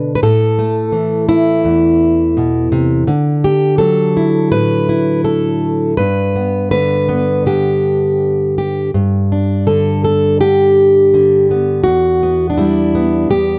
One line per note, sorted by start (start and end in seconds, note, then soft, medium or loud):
0.00 0.18 B2 medium
0.00 0.22 D3 medium
0.00 0.19 D4 soft
0.00 0.14 B4 medium
0.15 0.22 B4 medium
0.23 1.65 A2 medium
0.23 1.28 A4 loud
0.59 3.04 A3 soft
0.92 3.03 E3 medium
1.29 3.08 E4 loud
1.65 3.08 E2 medium
2.37 2.72 B2 medium
2.72 3.07 C3 medium
3.07 5.93 D3 medium
3.44 3.78 G4 medium
3.78 5.93 F#3 medium
3.78 4.51 A4 loud
4.17 4.88 E4 soft
4.52 5.94 A2 medium
4.52 5.24 B4 loud
4.89 5.94 E4 medium
5.25 5.97 A4 medium
5.97 8.90 G2 medium
5.97 6.70 B4 medium
6.36 7.07 B3 soft
6.71 7.45 D3 medium
6.71 7.45 B4 loud
7.09 8.90 B3 soft
7.46 8.90 D3 medium
7.46 8.57 G4 medium
8.58 8.90 G4 soft
8.94 11.80 G2 medium
9.32 11.81 D4 soft
9.67 10.39 D3 medium
9.67 10.03 A4 loud
10.04 10.40 A4 medium
10.40 11.12 D3 medium
10.40 11.84 G4 medium
11.14 11.85 D3 medium
11.51 11.81 B3 soft
11.84 13.29 E2 medium
11.84 12.49 F#4 medium
12.23 12.94 B3 soft
12.50 13.28 D4 medium
12.58 13.59 G3 medium
12.58 13.29 E4 medium
12.95 13.59 B3 soft
13.30 13.59 E2 medium
13.30 13.59 G4 medium